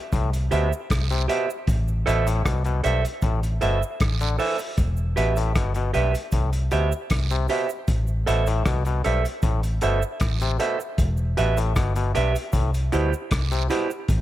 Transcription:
0.12 C2 A2, kick, closed hi-hat, cabasa
0.33 closed hi-hat, cabasa
0.51 D2 B2 G4 C5 E5, closed hi-hat, cabasa
0.73 cabasa
0.90 C2, kick, cross-stick, closed hi-hat, cabasa, long guiro
1.10 C3, closed hi-hat, cabasa
1.28 B2 G4 C5 E5, closed hi-hat, cabasa
1.50 cabasa
1.67 A1, kick, closed hi-hat, cabasa
1.88 cabasa
2.06 A1 B2 A4 C5 E5, closed hi-hat, cabasa
2.27 A2, closed hi-hat, cabasa
2.45 C2 B2, kick, cross-stick, closed hi-hat, cabasa
2.64 B2, closed hi-hat, cabasa
2.83 B1 G2 A4 C5 E5, closed hi-hat, cabasa
3.05 closed hi-hat, cabasa
3.22 A1 A2, kick, closed hi-hat, cabasa
3.43 closed hi-hat, cabasa
3.61 G1 B2 A4 C5 E5, closed hi-hat, cabasa
3.83 cabasa
4.00 A1, kick, cross-stick, closed hi-hat, cabasa, long guiro
4.20 D3, closed hi-hat, cabasa
4.39 E3 A4 C5 E5, open hi-hat, cabasa
4.59 muted clean electric guitar stroke, cabasa
4.78 E1, kick, closed hi-hat, cabasa
4.97 cabasa
5.16 A1 B2 G4 B4 E5, closed hi-hat, cabasa
5.36 A2, closed hi-hat, cabasa
5.55 G1 B2, kick, cross-stick, closed hi-hat, cabasa
5.74 B2, closed hi-hat, cabasa
5.93 B1 G2 G4 B4 E5, closed hi-hat, cabasa
6.15 closed hi-hat, cabasa
6.32 C2 A2, kick, closed hi-hat, cabasa
6.53 closed hi-hat, cabasa
6.71 D2 B2 G4 C5 E5, closed hi-hat, cabasa
6.92 cabasa
7.10 C2, kick, cross-stick, closed hi-hat, cabasa, long guiro
7.30 C3, closed hi-hat, cabasa
7.48 B2 G4 C5 E5, closed hi-hat, cabasa
7.69 cabasa
7.88 A1, kick, closed hi-hat, cabasa
8.07 cabasa
8.26 A1 B2 A4 C5 E5, closed hi-hat, cabasa
8.47 A2, closed hi-hat, cabasa
8.66 C2 B2, kick, cross-stick, closed hi-hat, cabasa
8.85 B2, closed hi-hat, cabasa
9.04 B1 G2 A4 C5 E5, closed hi-hat, cabasa
9.25 closed hi-hat, cabasa
9.42 A1 A2, kick, closed hi-hat, cabasa
9.63 closed hi-hat, cabasa
9.81 G1 B2 A4 C5 E5, closed hi-hat, cabasa
10.02 cabasa
10.20 A1, kick, cross-stick, closed hi-hat, cabasa, long guiro
10.40 C3, closed hi-hat, cabasa
10.59 B2 A4 C5 E5, closed hi-hat, cabasa
10.80 muted clean electric guitar stroke, cabasa
10.98 E1, kick, closed hi-hat, cabasa
11.17 cabasa
11.37 A1 B2 G4 B4 E5, closed hi-hat, cabasa
11.57 A2, closed hi-hat, cabasa
11.76 G1 B2, kick, cross-stick, closed hi-hat, cabasa
11.96 B2, closed hi-hat, cabasa
12.15 B1 G2 G4 B4 E5, closed hi-hat, cabasa
12.36 closed hi-hat, cabasa
12.53 C2 A2, kick, closed hi-hat, cabasa
12.74 closed hi-hat, cabasa
12.92 D2 B2 E4 G4 C5, closed hi-hat, cabasa
13.13 cabasa
13.31 C2, kick, cross-stick, closed hi-hat, cabasa, long guiro
13.51 C3, closed hi-hat, cabasa
13.70 B2 E4 G4 C5, closed hi-hat, cabasa
13.91 cabasa
14.08 A1, kick, closed hi-hat, cabasa

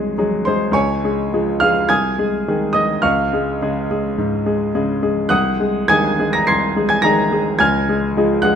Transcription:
Already playing: C2 F#3 G#3 G#4 D#5 C6 D#6
0.18 F#3 G#3 G#4
0.45 G#3 G#4 C5 C6
0.71 C#2 C#5 G#5 C#6
1.04 G#3 G#4
1.33 F3 G#3 G#4
1.60 G#3 G#4 F5 F6
1.89 C2 G#5 D#6 G#6
2.19 G#3 G#4
2.48 D#3 G#3 G#4
2.73 G#3 G#4 D#5 D#6
3.02 C#2 F5 C#6 F6
3.33 G#3 G#4
3.61 C#3 G#3 G#4
3.91 G#3 G#4
4.18 G#2
4.46 G#3 G#4
4.75 C#3 G#3 G#4
5.03 G#3 G#4
5.29 C2 F#5 D#6 F#6
5.60 G#3 G#4
5.88 D#3 G#3 G#4 G#5 D#6 G#6
6.19 G#3 G#4
6.33 A#5 A#6
6.47 C2 C6 G#6 C7
6.76 G#3 G#4
6.89 G#5 G#6
7.02 D#3 G#3 G#4 A#5 A#6
7.32 G#3 G#4
7.59 C#2 G#5 F6 G#6
7.89 G#3 G#4
8.17 F3 G#3 G#4
8.42 G#3 G#4 F#5 F#6

